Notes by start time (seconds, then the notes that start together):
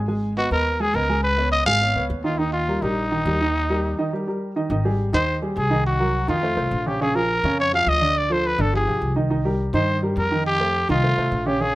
Already playing: G#1
0.08 G#3 G#4 G#5
0.37 B3 F#4 B4 D#5
0.51 D#2 B3 A#4 B4 D#5
0.80 G#3 G#4 G#5
0.94 C#2 B3 A#4 B4 D#5
1.09 G#3 G#4 G#5
1.23 B4
1.38 B3 B4 C#5
1.52 D#5
1.66 G#1 G#3 G#4 F5 G#5
1.81 B3 B4 C#5
1.96 C#2 B3 B4 C#5
2.10 D#2
2.24 D#3 D#4 F4 D#5
2.38 D#3 D#4 D#5
2.52 F4
2.68 G3 G4 A#4
2.82 A#1 G3 D#4 G4 A#4
3.11 D#3 D#4 D#5
3.26 D#2 G3 G4 A#4
3.41 D#3 D#4 D#5
3.70 G3 G4 A#4
3.98 D#3 D#4 D#5
4.13 G3 G4 A#4
4.27 G3 G4 A#4
4.56 D#3 D#4 D#5
4.70 G#1 D#3 D#4 D#5
4.85 G3 G4 G#4
5.13 D#2 D#3 D#4 C5 D#5
5.42 G3 G4 G#4
5.57 C2 G#4
5.70 D#3 D#4 D#5
5.86 F#4
5.99 F#3 F#4 A#4
6.28 F2 D#3 D#4 F4 D#5
6.42 A3 A4 C5
6.57 C2 A3 A4 C5
6.71 A#1
6.86 C#3 C#4 G4 C#5
7.01 C#3 C#4 G#4 C#5
7.15 F3 F4 G#4 A#4
7.44 F2 C#3 C#4 C#5
7.60 C#5
7.73 F3 F4 G#4 F5
7.87 D2 D#5
8.01 D3 D4 D5
8.18 D5
8.30 F3 F4 A4 C5
8.46 B4
8.59 G1 D3 D4 A4 D5
8.73 F3 F4 G4 G#4
8.87 B1 F3 F4 G4
9.01 C2
9.16 D#3 D#4 D#5
9.30 D#3 D#4 D#5
9.45 G3 G4 A#4
9.73 G2 D#3 D#4 C5 D#5
10.02 G3 G4 A#4
10.17 F2 A#4
10.31 D#3 D#4 D#5
10.46 G4
10.60 A3 A4 C5
10.89 C2 D#3 D#4 F4 D#5
11.03 A3 A4 C5
11.17 C2 A3 A4 C5
11.32 A#1
11.46 C#3 C#4 G4 C#5
11.61 C#3 C#4 G#4 C#5